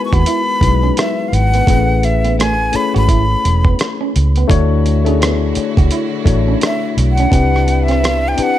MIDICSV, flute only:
0, 0, Header, 1, 2, 480
1, 0, Start_track
1, 0, Tempo, 705882
1, 1137, Time_signature, 4, 2, 24, 8
1, 5840, End_track
2, 0, Start_track
2, 0, Title_t, "Flute"
2, 0, Program_c, 0, 73
2, 35, Note_on_c, 0, 85, 70
2, 93, Note_on_c, 0, 83, 98
2, 103, Note_off_c, 0, 85, 0
2, 668, Note_on_c, 0, 76, 80
2, 678, Note_off_c, 0, 83, 0
2, 871, Note_on_c, 0, 77, 67
2, 881, Note_off_c, 0, 76, 0
2, 911, Note_on_c, 0, 78, 96
2, 921, Note_off_c, 0, 77, 0
2, 1392, Note_on_c, 0, 76, 85
2, 1402, Note_off_c, 0, 78, 0
2, 1624, Note_off_c, 0, 76, 0
2, 1633, Note_on_c, 0, 80, 91
2, 1876, Note_on_c, 0, 83, 90
2, 1886, Note_off_c, 0, 80, 0
2, 2011, Note_off_c, 0, 83, 0
2, 2022, Note_on_c, 0, 83, 84
2, 2704, Note_off_c, 0, 83, 0
2, 4524, Note_on_c, 0, 76, 80
2, 4735, Note_off_c, 0, 76, 0
2, 4841, Note_on_c, 0, 78, 94
2, 5326, Note_on_c, 0, 76, 87
2, 5336, Note_off_c, 0, 78, 0
2, 5632, Note_on_c, 0, 79, 94
2, 5642, Note_off_c, 0, 76, 0
2, 5729, Note_on_c, 0, 78, 94
2, 5739, Note_off_c, 0, 79, 0
2, 5840, Note_off_c, 0, 78, 0
2, 5840, End_track
0, 0, End_of_file